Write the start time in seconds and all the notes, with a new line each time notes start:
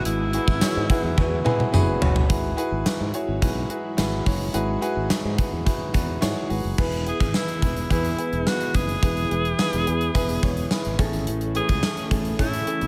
Already playing: G#2 G#3 B3 E4 F#4 G#4 B4
0.05 G#1 E4, closed hi-hat
0.33 B3 E4 F#4 G#4 B4, closed hi-hat
0.48 G#1, kick
0.61 B3 E4 F#4 G#4 C#5, muted fretless electric bass stroke, snare, closed hi-hat, tambourine
0.76 G#2
0.89 B3 E4 F#4 G#4 B4, kick, closed hi-hat
1.04 E2
1.17 E2 B3 E4 F#4 G#4 B4, kick, high tom
1.44 B3 E4 F#4 G#4 B4 G#5, mid tom
1.59 F#5, mid tom
1.72 F#1 B3 E4 F#4 G#4 B4 F#5, mid tom, tambourine
2.01 F#1 B3 E4 F#4 G#4 C#5 E5, floor tom
2.16 floor tom
2.29 G#1 G#2 G#3 E4 F#4 G#4 B4, kick, closed hi-hat
2.57 E4 F#4 G#4 B4, closed hi-hat
2.71 G#1
2.85 E4 F#4 G#4 B4, snare, closed hi-hat, tambourine
3.00 G#2
3.14 E4 F#4 G#4 C#5, closed hi-hat
3.28 G#1
3.42 B1 E4 F#4 G#4 B4, kick, closed hi-hat
3.69 E4 F#4 G#4 B4, closed hi-hat
3.97 G#1 E4 F#4 G#4 B4, snare, closed hi-hat, tambourine
4.25 F#1 E4 F#4 G#4 C#5, kick, open hi-hat
4.53 G#1 G#2 D#4 E4 F#4 G#4 B4, closed hi-hat
4.81 E4 F#4 G#4 B4, closed hi-hat
4.96 G#1
5.09 E4 F#4 G#4 B4, muted fretless electric bass stroke, snare, closed hi-hat, tambourine
5.25 G#2
5.37 E4 F#4 G#4 B4, kick, closed hi-hat
5.52 E2
5.65 E4 F#4 G#4 B4, kick, closed hi-hat
5.93 E2 E4 F#4 G#4 B4, kick, closed hi-hat
6.21 G#2 E4 F#4 G#4 C#5, snare, closed hi-hat, tambourine
6.49 G#1 E4 F#4 G#4 B4, open hi-hat
6.65 F#1
6.78 E1 E3 B3 E4 G#4 B4, kick, crash
6.92 closed hi-hat
7.06 B3 E4 G#4 B4, closed hi-hat
7.20 G#1, kick, closed hi-hat
7.34 B3 E4 G#4 B4, snare, tambourine
7.48 closed hi-hat
7.62 E1 B3 E4 G#4 B4, kick, closed hi-hat
7.76 closed hi-hat
7.90 E2 B3 E4 G#4 B4, kick, closed hi-hat
8.05 closed hi-hat
8.18 B3 E4 G#4 B4, closed hi-hat
8.32 E1, closed hi-hat
8.46 B3 E4 F#4 G#4 B4, snare, tambourine
8.61 closed hi-hat
8.74 F#1 B3 E4 G#4 B4, kick, closed hi-hat
8.89 closed hi-hat
9.02 E1 E3 B3 E4 G#4 B4, kick, closed hi-hat
9.17 closed hi-hat
9.30 E1 B3 E4 G#4 B4, closed hi-hat
9.45 closed hi-hat
9.59 B3 E4 G#4 B4, snare, tambourine
9.73 E1, closed hi-hat
9.86 E2 B3 E4 G#4 B4, closed hi-hat
10.01 closed hi-hat
10.14 E1 B3 E4 G#4 B4, kick, closed hi-hat
10.29 closed hi-hat
10.42 E1 B3 E4 G#4 C#5, kick, closed hi-hat
10.57 closed hi-hat
10.71 B3 E4 G#4 B4, snare, tambourine
10.85 G#1, closed hi-hat
10.98 A1 A2 E3 A3 C#4 E4 G#4 A4, kick, closed hi-hat
11.13 G#1, closed hi-hat
11.27 A1, closed hi-hat
11.41 closed hi-hat
11.55 C#4 E4 G#4 B4, closed hi-hat
11.69 C#2, kick, closed hi-hat
11.82 C#4 E4 G#4 A4, snare, tambourine
11.97 closed hi-hat
12.11 A1 C#4 E4 G#4 A4, kick, closed hi-hat
12.25 closed hi-hat
12.39 A2 C#4 E4 G#4 A4, kick, closed hi-hat
12.53 closed hi-hat
12.67 C#4 E4 G#4 A4, closed hi-hat
12.81 B1, closed hi-hat